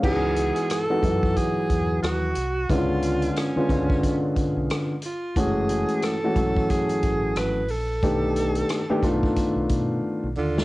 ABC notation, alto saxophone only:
X:1
M:4/4
L:1/8
Q:"Swing 16ths" 1/4=90
K:C#m
V:1 name="Alto saxophone"
G2 A2 G2 F2 | ^E2 C3 z2 E | G2 A2 G2 B A- | A4- A z2 ^E |]